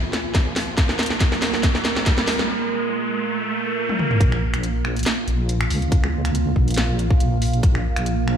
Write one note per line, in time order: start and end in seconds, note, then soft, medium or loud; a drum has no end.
0.00 0.33 A#1 medium
0.00 4.16 A#3 medium
0.00 4.16 F4 medium
0.00 4.19 A#4 medium
0.00 riser medium
0.13 snare medium
0.13 closed hi-hat soft
0.35 0.76 A#1 medium
0.35 kick medium
0.35 snare medium
0.35 closed hi-hat medium
0.56 snare medium
0.56 open hi-hat medium
0.77 1.62 A#1 medium
0.77 kick loud
0.77 snare loud
0.77 closed hi-hat medium
0.89 snare medium
0.99 snare medium
0.99 closed hi-hat soft
1.03 closed hi-hat medium
1.06 closed hi-hat medium
1.10 snare medium
1.20 kick loud
1.20 snare medium
1.20 closed hi-hat medium
1.32 snare medium
1.42 snare loud
1.42 open hi-hat medium
1.54 snare medium
1.63 kick loud
1.63 snare loud
1.63 closed hi-hat medium
1.75 snare medium
1.85 2.26 A#1 loud
1.85 snare medium
1.85 closed hi-hat medium
1.96 snare medium
2.06 kick medium
2.06 snare loud
2.06 closed hi-hat medium
2.18 snare medium
2.27 2.49 C#2 loud
2.27 snare loud
2.27 open hi-hat medium
2.39 snare medium
3.89 high tom medium
3.99 mid tom medium
4.11 mid tom medium
4.20 5.05 A#1 loud
4.20 8.37 A#3 medium
4.20 8.37 F4 medium
4.20 8.37 F5 medium
4.20 kick loud
4.20 closed hi-hat medium
4.32 finger snap medium
4.54 finger snap medium
4.54 closed hi-hat medium
4.63 closed hi-hat medium
4.85 finger snap medium
4.96 closed hi-hat medium
4.99 closed hi-hat medium
5.03 snare loud
5.03 closed hi-hat medium
5.06 closed hi-hat medium
5.27 5.69 A#1 loud
5.27 closed hi-hat medium
5.49 closed hi-hat medium
5.61 finger snap medium
5.70 6.54 C#2 loud
5.70 open hi-hat loud
5.82 closed hi-hat soft
5.92 kick loud
5.92 closed hi-hat medium
6.04 finger snap medium
6.25 finger snap medium
6.25 closed hi-hat medium
6.35 closed hi-hat medium
6.56 7.19 A#1 loud
6.56 kick medium
6.68 closed hi-hat medium
6.71 closed hi-hat medium
6.74 snare loud
6.74 closed hi-hat medium
6.78 closed hi-hat medium
6.99 closed hi-hat medium
7.11 kick loud
7.20 7.62 A#1 loud
7.20 closed hi-hat medium
7.42 open hi-hat medium
7.53 closed hi-hat soft
7.63 8.37 A#1 loud
7.63 kick loud
7.63 closed hi-hat medium
7.75 finger snap soft
7.96 finger snap medium
7.96 closed hi-hat medium
8.06 closed hi-hat medium
8.28 finger snap medium